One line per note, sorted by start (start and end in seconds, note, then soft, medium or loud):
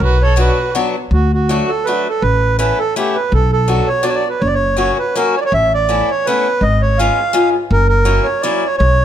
0.00 0.48 B1 medium
0.00 0.21 F#4 medium
0.04 0.23 B4 medium
0.22 0.38 A4 medium
0.22 0.39 C#5 medium
0.36 0.57 F#3 medium
0.36 0.57 B3 soft
0.36 0.57 D4 soft
0.36 0.57 F#4 medium
0.36 0.73 F#4 medium
0.40 0.74 B4 medium
0.75 0.95 F#3 medium
0.75 0.95 B3 medium
0.75 0.95 D4 medium
0.75 0.95 F#4 medium
1.11 1.59 D2 loud
1.11 1.32 F#4 medium
1.33 1.71 F#4 medium
1.49 1.69 F#3 soft
1.49 1.69 A3 soft
1.49 1.69 D4 soft
1.49 1.70 F#4 medium
1.68 1.86 A4 medium
1.85 2.06 F#3 medium
1.85 2.06 A3 medium
1.85 2.06 D4 medium
1.85 2.06 F#4 medium
1.85 2.08 B4 medium
2.09 2.23 A4 medium
2.22 2.70 A1 loud
2.22 2.57 B4 medium
2.58 2.78 A3 medium
2.58 2.79 B3 soft
2.58 2.79 C#4 medium
2.58 2.79 E4 medium
2.58 2.79 B4 medium
2.79 2.95 A4 medium
2.96 3.15 A3 medium
2.96 3.15 B3 soft
2.96 3.15 C#4 soft
2.96 3.15 E4 medium
2.96 3.17 G4 medium
3.15 3.33 B4 medium
3.32 3.79 B1 loud
3.32 3.51 A4 medium
3.53 3.89 A4 medium
3.68 3.87 F#3 medium
3.68 3.87 B3 soft
3.68 3.87 D4 soft
3.68 3.87 F#4 medium
3.88 4.05 C#5 medium
4.03 4.23 F#3 medium
4.03 4.23 B3 medium
4.03 4.23 D4 medium
4.03 4.23 F#4 medium
4.03 4.10 D5 medium
4.08 4.15 C#5 medium
4.15 4.28 D5 medium
4.29 4.41 B4 medium
4.40 4.89 F#1 loud
4.40 4.48 C#5 medium
4.47 4.55 D5 medium
4.54 4.77 C#5 medium
4.77 4.96 F#3 medium
4.77 4.96 A#3 soft
4.77 4.97 C#4 medium
4.77 4.97 F#4 medium
4.77 4.98 C#5 medium
4.99 5.15 B4 medium
5.16 5.34 F#3 medium
5.16 5.34 A#3 medium
5.16 5.35 C#4 medium
5.16 5.35 F#4 medium
5.16 5.35 A#4 medium
5.37 5.40 C#5 medium
5.37 5.44 D5 medium
5.46 5.53 C#5 medium
5.52 6.00 A1 loud
5.52 5.73 E5 loud
5.74 6.11 D5 medium
5.89 6.08 A3 medium
5.89 6.08 B3 medium
5.89 6.09 C#4 medium
5.89 6.08 E4 soft
6.10 6.27 C#5 medium
6.26 6.46 A3 medium
6.26 6.46 B3 medium
6.26 6.46 C#4 medium
6.26 6.46 E4 medium
6.26 6.63 B4 medium
6.61 7.08 G#1 medium
6.61 6.82 D#5 medium
6.82 6.99 C#5 medium
6.98 7.18 G#3 medium
6.98 7.18 B3 soft
6.98 7.18 C#4 soft
6.98 7.18 F4 medium
6.98 7.50 F5 medium
7.33 7.53 G#3 medium
7.33 7.53 B3 soft
7.33 7.53 C#4 medium
7.33 7.53 F4 medium
7.71 8.18 F#1 loud
7.71 7.87 A#4 medium
7.89 8.27 A#4 medium
8.05 8.25 F#3 medium
8.05 8.25 A#3 soft
8.05 8.26 C#4 medium
8.05 8.26 E4 medium
8.24 8.43 C#5 medium
8.41 8.63 F#3 medium
8.41 8.63 A#3 medium
8.41 8.63 C#4 soft
8.41 8.63 E4 medium
8.41 8.67 D5 medium
8.66 8.76 C#5 medium
8.77 9.05 B1 loud
8.77 9.05 C#5 loud